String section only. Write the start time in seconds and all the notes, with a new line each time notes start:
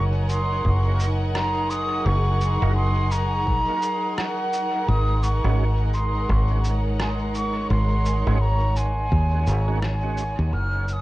Already playing: F#3 D#4 A#4 C#5 F#5
0.55 G#4
4.88 G#3
6.15 C#5
10.52 F#3